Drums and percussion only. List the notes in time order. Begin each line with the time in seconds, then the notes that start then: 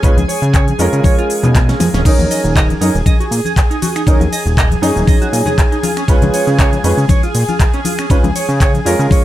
0.03 kick, closed hi-hat, low conga, shaker
0.18 closed hi-hat, high conga, shaker
0.29 open hi-hat, shaker
0.43 closed hi-hat, shaker
0.54 kick, clap, closed hi-hat, shaker
0.68 closed hi-hat, high conga, shaker
0.79 open hi-hat, shaker
0.93 closed hi-hat, shaker
1.04 kick, open hi-hat, high conga, shaker
1.18 closed hi-hat, shaker
1.30 open hi-hat, shaker
1.43 closed hi-hat, high conga, low conga, shaker
1.55 kick, snare, clap, closed hi-hat, shaker
1.69 snare, closed hi-hat, shaker
1.80 snare, open hi-hat, high conga, shaker
1.94 snare, closed hi-hat, shaker
2.05 kick, closed hi-hat, crash, ride, shaker
2.19 closed hi-hat, high conga, shaker
2.31 open hi-hat, ride, shaker
2.45 closed hi-hat, shaker
2.56 kick, clap, closed hi-hat, ride, shaker
2.69 closed hi-hat, high conga, shaker
2.82 open hi-hat, ride, shaker
2.95 closed hi-hat, shaker
3.06 kick, closed hi-hat, ride, high conga, shaker
3.21 closed hi-hat, shaker
3.32 open hi-hat, ride, shaker
3.45 closed hi-hat, high conga, shaker
3.56 kick, clap, closed hi-hat, ride, shaker
3.71 closed hi-hat, shaker
3.82 open hi-hat, ride, high conga, shaker
3.96 finger snap, closed hi-hat, shaker
4.07 kick, closed hi-hat, ride, shaker
4.20 closed hi-hat, high conga, shaker
4.33 open hi-hat, ride, shaker
4.47 closed hi-hat, shaker
4.57 kick, clap, closed hi-hat, ride, shaker
4.71 closed hi-hat, high conga, shaker
4.83 open hi-hat, ride, shaker
4.97 closed hi-hat, shaker
5.07 kick, open hi-hat, ride, high conga, shaker
5.22 closed hi-hat, shaker
5.33 open hi-hat, ride, shaker
5.46 closed hi-hat, high conga, low conga, shaker
5.58 kick, clap, closed hi-hat, ride, shaker
5.72 closed hi-hat, shaker
5.83 open hi-hat, ride, high conga, shaker
5.97 finger snap, closed hi-hat, shaker
6.08 kick, closed hi-hat, ride, shaker
6.22 closed hi-hat, high conga, shaker
6.34 open hi-hat, ride, shaker
6.47 closed hi-hat, shaker
6.59 kick, clap, closed hi-hat, ride, shaker
6.73 closed hi-hat, high conga, shaker
6.84 open hi-hat, ride, shaker
6.98 closed hi-hat, shaker
7.09 kick, closed hi-hat, ride, high conga, shaker
7.23 closed hi-hat, shaker
7.35 open hi-hat, ride, shaker
7.48 closed hi-hat, high conga, shaker
7.60 kick, clap, closed hi-hat, ride, shaker
7.74 closed hi-hat, shaker
7.85 open hi-hat, ride, high conga, shaker
7.99 finger snap, closed hi-hat, shaker
8.10 kick, closed hi-hat, ride, shaker
8.24 closed hi-hat, high conga, shaker
8.36 open hi-hat, ride, shaker
8.49 closed hi-hat, shaker
8.60 kick, clap, closed hi-hat, ride, shaker
8.74 closed hi-hat, high conga, shaker
8.86 open hi-hat, ride, shaker
9.00 closed hi-hat, shaker
9.10 kick, open hi-hat, ride, high conga, shaker